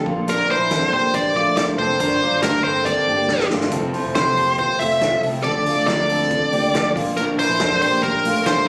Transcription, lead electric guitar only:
0, 0, Header, 1, 2, 480
1, 0, Start_track
1, 0, Tempo, 430725
1, 310, Time_signature, 4, 2, 24, 8
1, 9673, End_track
2, 0, Start_track
2, 0, Title_t, "Lead electric guitar"
2, 0, Program_c, 0, 29
2, 332, Note_on_c, 0, 70, 87
2, 566, Note_off_c, 0, 70, 0
2, 571, Note_on_c, 0, 72, 83
2, 1029, Note_off_c, 0, 72, 0
2, 1042, Note_on_c, 0, 72, 81
2, 1279, Note_on_c, 0, 74, 95
2, 1283, Note_off_c, 0, 72, 0
2, 1498, Note_off_c, 0, 74, 0
2, 1521, Note_on_c, 0, 74, 84
2, 1736, Note_off_c, 0, 74, 0
2, 1750, Note_on_c, 0, 74, 84
2, 1815, Note_off_c, 0, 74, 0
2, 1988, Note_on_c, 0, 72, 80
2, 2697, Note_off_c, 0, 72, 0
2, 2701, Note_on_c, 0, 70, 75
2, 2937, Note_off_c, 0, 70, 0
2, 2941, Note_on_c, 0, 72, 71
2, 3179, Note_on_c, 0, 74, 78
2, 3194, Note_off_c, 0, 72, 0
2, 3861, Note_off_c, 0, 74, 0
2, 4628, Note_on_c, 0, 72, 72
2, 5076, Note_off_c, 0, 72, 0
2, 5115, Note_on_c, 0, 72, 81
2, 5337, Note_off_c, 0, 72, 0
2, 5342, Note_on_c, 0, 76, 90
2, 5793, Note_off_c, 0, 76, 0
2, 6054, Note_on_c, 0, 74, 105
2, 6532, Note_off_c, 0, 74, 0
2, 6545, Note_on_c, 0, 74, 93
2, 7704, Note_off_c, 0, 74, 0
2, 7989, Note_on_c, 0, 70, 83
2, 8054, Note_off_c, 0, 70, 0
2, 8235, Note_on_c, 0, 72, 78
2, 8698, Note_off_c, 0, 72, 0
2, 8712, Note_on_c, 0, 72, 75
2, 8944, Note_off_c, 0, 72, 0
2, 8948, Note_on_c, 0, 70, 85
2, 9433, Note_off_c, 0, 70, 0
2, 9438, Note_on_c, 0, 72, 75
2, 9656, Note_off_c, 0, 72, 0
2, 9673, End_track
0, 0, End_of_file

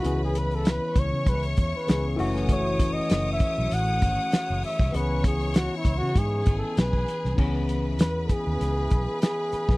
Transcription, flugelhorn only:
0, 0, Header, 1, 2, 480
1, 0, Start_track
1, 0, Key_signature, 4, "minor"
1, 0, Tempo, 611621
1, 35, Time_signature, 4, 2, 24, 8
1, 7671, End_track
2, 0, Start_track
2, 0, Title_t, "Flugelhorn"
2, 0, Program_c, 0, 56
2, 0, Note_on_c, 0, 66, 89
2, 175, Note_off_c, 0, 66, 0
2, 191, Note_on_c, 0, 68, 86
2, 299, Note_on_c, 0, 71, 83
2, 310, Note_off_c, 0, 68, 0
2, 433, Note_on_c, 0, 69, 91
2, 445, Note_off_c, 0, 71, 0
2, 546, Note_on_c, 0, 71, 91
2, 557, Note_off_c, 0, 69, 0
2, 778, Note_on_c, 0, 73, 102
2, 790, Note_off_c, 0, 71, 0
2, 1010, Note_on_c, 0, 71, 90
2, 1022, Note_off_c, 0, 73, 0
2, 1132, Note_off_c, 0, 71, 0
2, 1262, Note_on_c, 0, 73, 81
2, 1387, Note_on_c, 0, 71, 86
2, 1398, Note_off_c, 0, 73, 0
2, 1615, Note_off_c, 0, 71, 0
2, 1980, Note_on_c, 0, 73, 104
2, 2299, Note_on_c, 0, 75, 105
2, 2311, Note_off_c, 0, 73, 0
2, 2606, Note_off_c, 0, 75, 0
2, 2610, Note_on_c, 0, 76, 104
2, 2933, Note_on_c, 0, 78, 116
2, 2945, Note_off_c, 0, 76, 0
2, 3643, Note_off_c, 0, 78, 0
2, 3648, Note_on_c, 0, 76, 101
2, 3890, Note_on_c, 0, 71, 99
2, 3902, Note_off_c, 0, 76, 0
2, 4121, Note_off_c, 0, 71, 0
2, 4130, Note_on_c, 0, 68, 92
2, 4345, Note_off_c, 0, 68, 0
2, 4364, Note_on_c, 0, 66, 90
2, 4508, Note_off_c, 0, 66, 0
2, 4531, Note_on_c, 0, 64, 89
2, 4690, Note_on_c, 0, 66, 101
2, 4702, Note_off_c, 0, 64, 0
2, 4850, Note_on_c, 0, 68, 91
2, 4862, Note_off_c, 0, 66, 0
2, 5157, Note_off_c, 0, 68, 0
2, 5162, Note_on_c, 0, 69, 86
2, 5322, Note_on_c, 0, 71, 100
2, 5334, Note_off_c, 0, 69, 0
2, 5798, Note_off_c, 0, 71, 0
2, 6281, Note_on_c, 0, 71, 88
2, 6521, Note_on_c, 0, 68, 91
2, 6533, Note_off_c, 0, 71, 0
2, 7232, Note_off_c, 0, 68, 0
2, 7237, Note_on_c, 0, 68, 100
2, 7671, Note_off_c, 0, 68, 0
2, 7671, End_track
0, 0, End_of_file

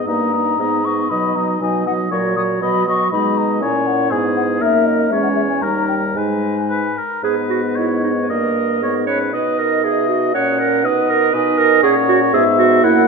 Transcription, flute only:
0, 0, Header, 1, 2, 480
1, 0, Start_track
1, 0, Key_signature, 5, "minor"
1, 0, Tempo, 513259
1, 70, Time_signature, 2, 2, 24, 8
1, 1507, Tempo, 499584
1, 4867, Tempo, 531915
1, 7747, Tempo, 515021
1, 9187, Tempo, 498753
1, 12297, End_track
2, 0, Start_track
2, 0, Title_t, "Flute"
2, 0, Program_c, 0, 73
2, 65, Note_on_c, 0, 82, 70
2, 794, Note_on_c, 0, 85, 64
2, 808, Note_off_c, 0, 82, 0
2, 1024, Note_on_c, 0, 83, 61
2, 1038, Note_off_c, 0, 85, 0
2, 1266, Note_on_c, 0, 82, 63
2, 1280, Note_off_c, 0, 83, 0
2, 1500, Note_off_c, 0, 82, 0
2, 1506, Note_on_c, 0, 80, 70
2, 1742, Note_off_c, 0, 80, 0
2, 1753, Note_on_c, 0, 78, 64
2, 1810, Note_off_c, 0, 78, 0
2, 1992, Note_on_c, 0, 85, 71
2, 2050, Note_off_c, 0, 85, 0
2, 2229, Note_on_c, 0, 87, 74
2, 2287, Note_off_c, 0, 87, 0
2, 2479, Note_on_c, 0, 83, 78
2, 2712, Note_off_c, 0, 83, 0
2, 2731, Note_on_c, 0, 85, 79
2, 2953, Note_off_c, 0, 85, 0
2, 2959, Note_on_c, 0, 83, 82
2, 3200, Note_on_c, 0, 82, 71
2, 3215, Note_off_c, 0, 83, 0
2, 3436, Note_off_c, 0, 82, 0
2, 3441, Note_on_c, 0, 80, 74
2, 3677, Note_on_c, 0, 78, 80
2, 3691, Note_off_c, 0, 80, 0
2, 3905, Note_off_c, 0, 78, 0
2, 3911, Note_on_c, 0, 80, 70
2, 3969, Note_off_c, 0, 80, 0
2, 4152, Note_on_c, 0, 78, 68
2, 4210, Note_off_c, 0, 78, 0
2, 4387, Note_on_c, 0, 76, 77
2, 4624, Note_on_c, 0, 75, 72
2, 4638, Note_off_c, 0, 76, 0
2, 4859, Note_on_c, 0, 76, 73
2, 4873, Note_off_c, 0, 75, 0
2, 4971, Note_off_c, 0, 76, 0
2, 4976, Note_on_c, 0, 78, 64
2, 5029, Note_off_c, 0, 78, 0
2, 5088, Note_on_c, 0, 76, 64
2, 5142, Note_off_c, 0, 76, 0
2, 5209, Note_on_c, 0, 80, 62
2, 5323, Note_on_c, 0, 82, 68
2, 5337, Note_off_c, 0, 80, 0
2, 5561, Note_off_c, 0, 82, 0
2, 5567, Note_on_c, 0, 79, 62
2, 5622, Note_off_c, 0, 79, 0
2, 5802, Note_on_c, 0, 80, 61
2, 6524, Note_off_c, 0, 80, 0
2, 6787, Note_on_c, 0, 75, 43
2, 7711, Note_off_c, 0, 75, 0
2, 7745, Note_on_c, 0, 75, 42
2, 8223, Note_off_c, 0, 75, 0
2, 8229, Note_on_c, 0, 75, 45
2, 8698, Note_off_c, 0, 75, 0
2, 8713, Note_on_c, 0, 75, 42
2, 9180, Note_on_c, 0, 76, 47
2, 9194, Note_off_c, 0, 75, 0
2, 9660, Note_on_c, 0, 78, 52
2, 9675, Note_off_c, 0, 76, 0
2, 10148, Note_off_c, 0, 78, 0
2, 10153, Note_on_c, 0, 78, 56
2, 10616, Note_off_c, 0, 78, 0
2, 10621, Note_on_c, 0, 80, 57
2, 11104, Note_on_c, 0, 78, 62
2, 11118, Note_off_c, 0, 80, 0
2, 11584, Note_on_c, 0, 76, 65
2, 11599, Note_off_c, 0, 78, 0
2, 12059, Note_on_c, 0, 78, 69
2, 12074, Note_off_c, 0, 76, 0
2, 12297, Note_off_c, 0, 78, 0
2, 12297, End_track
0, 0, End_of_file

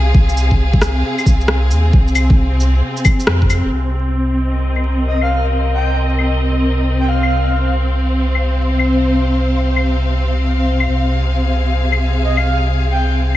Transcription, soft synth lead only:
0, 0, Header, 1, 2, 480
1, 0, Start_track
1, 0, Key_signature, -3, "minor"
1, 0, Tempo, 447761
1, 154, Time_signature, 4, 2, 24, 8
1, 14332, End_track
2, 0, Start_track
2, 0, Title_t, "Soft synth lead"
2, 0, Program_c, 0, 80
2, 5436, Note_on_c, 0, 75, 82
2, 5559, Note_off_c, 0, 75, 0
2, 5597, Note_on_c, 0, 77, 88
2, 5841, Note_off_c, 0, 77, 0
2, 6154, Note_on_c, 0, 79, 87
2, 6409, Note_off_c, 0, 79, 0
2, 7504, Note_on_c, 0, 79, 86
2, 7575, Note_off_c, 0, 79, 0
2, 7594, Note_on_c, 0, 77, 92
2, 8279, Note_off_c, 0, 77, 0
2, 13119, Note_on_c, 0, 75, 86
2, 13240, Note_off_c, 0, 75, 0
2, 13268, Note_on_c, 0, 77, 91
2, 13517, Note_off_c, 0, 77, 0
2, 13838, Note_on_c, 0, 79, 90
2, 14091, Note_off_c, 0, 79, 0
2, 14332, End_track
0, 0, End_of_file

